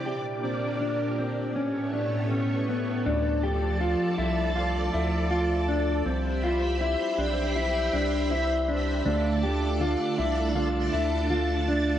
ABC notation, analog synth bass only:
X:1
M:4/4
L:1/16
Q:1/4=80
K:Aphr
V:1 name="Analog synth bass" clef=bass
z16 | [K:Ddor] D,,4- D,, z C,,4 D,,6 | C,,4- C,, z B,,,4 C,,6 | D,,4- D,, z C,,4 D,,6 |]